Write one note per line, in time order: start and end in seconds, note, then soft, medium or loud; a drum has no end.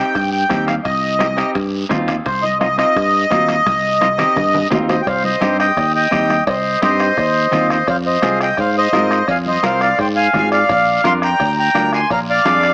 0.00 0.16 C4 medium
0.00 0.16 D#4 medium
0.00 0.16 G4 medium
0.00 0.30 G5 medium
0.15 0.43 G2 medium
0.15 bombo low medium
0.15 bombo rim medium
0.15 high timbale medium
0.15 long guiro medium
0.32 0.65 G5 medium
0.50 0.78 D#2 medium
0.50 0.75 C4 medium
0.50 0.75 D#4 medium
0.50 0.75 G4 medium
0.50 bombo low medium
0.50 bombo rim medium
0.50 high conga medium
0.50 high timbale medium
0.50 short guiro medium
0.67 0.75 F5 medium
0.67 bombo rim medium
0.67 high conga medium
0.67 high timbale medium
0.67 short guiro medium
0.84 1.42 C2 medium
0.84 1.51 D#5 medium
0.84 bombo low medium
0.84 bombo rim medium
0.84 high timbale medium
0.84 long guiro medium
1.19 1.26 C4 medium
1.19 1.26 D#4 medium
1.19 1.27 G4 medium
1.19 bombo rim medium
1.19 high conga medium
1.19 high timbale medium
1.19 short guiro medium
1.37 1.56 C4 medium
1.37 1.56 D#4 medium
1.37 1.56 G4 medium
1.37 bombo rim medium
1.37 high timbale medium
1.37 short guiro medium
1.55 1.84 G2 medium
1.55 bombo low medium
1.55 bombo rim medium
1.55 high conga soft
1.55 high timbale medium
1.55 long guiro medium
1.89 2.19 D#2 medium
1.89 2.15 C4 medium
1.89 2.15 D#4 medium
1.89 2.15 F4 medium
1.89 bombo low medium
1.89 bombo rim medium
1.89 high conga medium
1.89 low conga medium
1.89 high timbale medium
1.89 low timbale medium
1.89 short guiro medium
2.08 bombo rim medium
2.08 low conga medium
2.08 high timbale medium
2.08 short guiro medium
2.26 2.82 C2 medium
2.26 2.44 C5 medium
2.26 bombo low medium
2.26 bombo rim medium
2.26 high timbale medium
2.26 long guiro medium
2.43 2.58 D#5 loud
2.43 high conga medium
2.60 2.67 C4 medium
2.60 2.67 D#4 medium
2.60 2.67 F4 medium
2.60 2.77 D#5 loud
2.60 bombo rim medium
2.60 high conga medium
2.60 high timbale medium
2.60 short guiro medium
2.78 2.97 C4 medium
2.78 2.97 D#4 medium
2.78 2.97 F4 medium
2.78 4.68 D#5 loud
2.78 bombo rim medium
2.78 high timbale medium
2.78 short guiro medium
2.96 3.24 G2 medium
2.96 bombo low medium
2.96 bombo rim medium
2.96 high conga soft
2.96 high timbale medium
2.96 long guiro medium
3.31 3.59 D#2 medium
3.31 3.55 C4 medium
3.31 3.56 D#4 medium
3.31 3.56 F4 medium
3.31 bombo low medium
3.31 bombo rim medium
3.31 high conga medium
3.31 high timbale medium
3.31 low timbale medium
3.31 short guiro medium
3.49 bombo rim medium
3.49 high conga medium
3.49 high timbale medium
3.49 short guiro medium
3.66 4.23 C2 loud
3.66 bombo low medium
3.66 bombo rim medium
3.66 high conga medium
3.66 high timbale medium
3.66 long guiro medium
4.01 4.07 C4 medium
4.01 4.08 D#4 medium
4.01 4.08 F4 medium
4.01 bombo rim medium
4.01 high conga loud
4.01 high timbale medium
4.01 short guiro medium
4.18 4.37 C4 medium
4.18 4.37 D#4 medium
4.18 4.38 G4 medium
4.18 bombo rim medium
4.18 low conga medium
4.18 high timbale medium
4.18 short guiro medium
4.36 4.65 G2 medium
4.36 bombo low medium
4.36 bombo rim medium
4.36 low conga medium
4.36 high timbale medium
4.36 long guiro medium
4.54 low conga medium
4.54 high timbale medium
4.70 5.00 D#2 medium
4.70 4.96 C4 medium
4.70 4.96 D#4 medium
4.70 4.96 F4 medium
4.70 bombo low medium
4.70 bombo rim medium
4.70 low conga loud
4.70 low timbale loud
4.70 short guiro medium
4.89 5.02 C5 medium
4.89 5.01 D#5 medium
4.89 bombo rim medium
4.89 low conga medium
4.89 low timbale loud
4.89 short guiro medium
5.02 5.07 G5 medium
5.07 5.35 C2 loud
5.07 5.23 C5 medium
5.07 5.23 F5 medium
5.07 bombo low medium
5.07 bombo rim medium
5.07 cowbell loud
5.07 high conga soft
5.07 long guiro medium
5.24 5.57 C5 medium
5.24 5.57 D#5 medium
5.24 high conga medium
5.41 5.70 G2 medium
5.41 5.66 C4 medium
5.41 5.66 D#4 medium
5.41 5.66 G4 medium
5.41 bombo rim medium
5.41 cowbell medium
5.41 high conga medium
5.41 short guiro medium
5.59 5.93 D#5 medium
5.59 5.92 G5 medium
5.59 bombo rim medium
5.59 short guiro medium
5.77 6.05 D#2 medium
5.77 bombo low medium
5.77 bombo rim medium
5.77 cowbell medium
5.77 high conga soft
5.77 long guiro medium
5.95 6.44 D#5 medium
5.95 6.44 G5 loud
6.11 6.40 D#2 medium
6.11 6.36 C4 medium
6.11 6.37 D#4 medium
6.11 6.37 G4 medium
6.11 bombo low medium
6.11 bombo rim medium
6.11 cowbell medium
6.11 high conga medium
6.11 short guiro medium
6.30 bombo rim medium
6.30 high conga medium
6.30 short guiro medium
6.47 6.75 C2 loud
6.47 6.81 C5 medium
6.47 6.81 D#5 medium
6.47 bombo low medium
6.47 bombo rim medium
6.47 cowbell loud
6.47 high conga soft
6.47 long guiro medium
6.82 7.10 G2 medium
6.82 7.07 C4 medium
6.82 7.07 D#4 medium
6.82 7.07 G4 medium
6.82 7.67 C5 medium
6.82 7.70 D#5 medium
6.82 bombo rim medium
6.82 cowbell medium
6.82 high conga medium
6.82 short guiro medium
6.99 bombo rim medium
6.99 short guiro medium
7.17 7.46 D#2 loud
7.17 bombo low medium
7.17 bombo rim medium
7.17 cowbell medium
7.17 high conga soft
7.17 long guiro medium
7.52 7.81 D#2 medium
7.52 7.77 C4 medium
7.52 7.77 D#4 medium
7.52 7.78 F4 medium
7.52 bombo rim medium
7.52 cowbell medium
7.52 high conga medium
7.52 low conga medium
7.52 short guiro medium
7.70 7.87 C5 medium
7.70 7.87 D#5 medium
7.70 bombo rim medium
7.70 low conga medium
7.70 short guiro medium
7.87 8.16 F2 loud
7.87 7.97 C5 medium
7.87 7.97 F5 medium
7.87 bombo low medium
7.87 bombo rim medium
7.87 cowbell loud
7.87 high conga soft
7.87 long guiro medium
8.06 8.39 C5 medium
8.06 8.39 D#5 medium
8.22 8.51 C2 medium
8.22 8.48 C4 medium
8.22 8.48 F4 medium
8.22 8.48 G#4 medium
8.22 bombo rim medium
8.22 cowbell medium
8.22 high conga medium
8.22 short guiro medium
8.40 8.58 D#5 medium
8.40 8.60 G5 medium
8.40 bombo rim medium
8.40 short guiro medium
8.57 8.86 G#2 loud
8.57 8.75 C5 medium
8.57 8.75 F5 medium
8.57 bombo low medium
8.57 bombo rim medium
8.57 cowbell medium
8.57 long guiro medium
8.78 9.26 C5 medium
8.78 9.31 D#5 loud
8.93 9.21 G#2 medium
8.93 9.18 C4 medium
8.93 9.18 F4 medium
8.93 9.18 A#4 medium
8.93 bombo rim medium
8.93 cowbell medium
8.93 high conga medium
8.93 low timbale medium
8.93 short guiro medium
9.11 bombo rim medium
9.11 short guiro medium
9.28 9.57 F2 medium
9.28 9.38 F5 medium
9.28 9.38 G#5 medium
9.28 bombo low medium
9.28 bombo rim medium
9.28 cowbell loud
9.28 high conga soft
9.28 long guiro medium
9.46 9.63 C5 medium
9.46 9.64 D#5 medium
9.46 high conga medium
9.63 9.92 C2 medium
9.63 9.88 C4 medium
9.63 9.88 F4 medium
9.63 9.89 A#4 medium
9.63 9.81 C5 medium
9.63 9.80 F5 medium
9.63 bombo rim medium
9.63 cowbell medium
9.63 high conga medium
9.63 short guiro medium
9.81 9.98 D5 medium
9.81 9.98 F5 medium
9.81 bombo rim medium
9.81 short guiro medium
9.99 10.27 G#2 medium
9.99 10.08 C5 medium
9.99 10.08 G5 medium
9.99 bombo low medium
9.99 bombo rim medium
9.99 cowbell medium
9.99 high conga soft
9.99 long guiro medium
10.16 10.49 F5 medium
10.16 10.49 G#5 loud
10.33 10.63 G#2 medium
10.33 10.59 C4 medium
10.33 10.59 F4 medium
10.33 10.59 G#4 medium
10.33 bombo low medium
10.33 bombo rim medium
10.33 cowbell medium
10.33 high conga medium
10.33 low conga medium
10.33 low timbale medium
10.33 short guiro medium
10.52 11.01 D5 medium
10.52 11.04 F5 loud
10.52 bombo rim medium
10.52 short guiro medium
10.69 10.98 A#1 medium
10.69 bombo low medium
10.69 bombo rim medium
10.69 cowbell loud
10.69 long guiro medium
11.04 11.33 F2 medium
11.04 11.29 D4 medium
11.04 11.29 F4 medium
11.04 11.30 A#4 medium
11.04 11.13 F5 medium
11.04 11.14 C6 loud
11.04 bombo rim medium
11.04 cowbell medium
11.04 high conga medium
11.04 short guiro medium
11.22 11.56 G5 medium
11.22 11.58 A#5 loud
11.22 bombo rim medium
11.22 short guiro medium
11.40 11.68 D2 medium
11.40 bombo low medium
11.40 bombo rim medium
11.40 cowbell medium
11.40 high conga soft
11.40 long guiro medium
11.59 11.91 G5 medium
11.59 11.91 A#5 loud
11.75 12.03 D2 medium
11.75 12.00 D4 medium
11.75 12.00 F4 soft
11.75 12.00 A#4 medium
11.75 bombo rim medium
11.75 cowbell medium
11.75 high conga medium
11.75 short guiro medium
11.93 12.10 G#5 medium
11.93 12.10 C6 medium
11.93 bombo rim medium
11.93 short guiro medium
12.10 12.39 A#1 loud
12.10 12.20 F5 medium
12.10 12.20 A#5 medium
12.10 bombo low medium
12.10 bombo rim medium
12.10 cowbell loud
12.10 high conga soft
12.10 long guiro medium
12.30 12.74 D5 medium
12.30 12.74 F5 loud
12.45 12.74 F2 medium
12.45 12.70 D4 medium
12.45 12.70 F4 medium
12.45 12.71 G#4 medium
12.45 bombo rim medium
12.45 cowbell medium
12.45 high conga medium
12.45 short guiro medium
12.63 bombo rim medium
12.63 short guiro medium